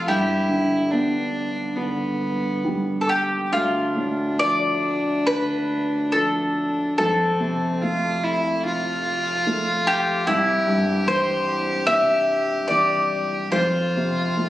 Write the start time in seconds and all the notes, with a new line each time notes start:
0.08 G2 E4 G4
0.49 D3
0.91 B3 D4
1.76 D3 B3
2.65 G3
3.01 A4
3.09 G4
3.53 D2 D4 F4
3.96 A2
4.39 F3 D5
5.26 D3 B4
6.12 F3 A4
6.98 F2 C4 A4
7.40 C3
7.82 A3 F4
8.23 E4
8.65 F3 F4
9.47 A3
9.87 G4
10.27 C2 E4 G4
10.68 G2
11.07 E3 C5
11.87 C3 E5
12.68 E3 D5
13.52 F2 F4 C5
13.97 C3
14.37 A3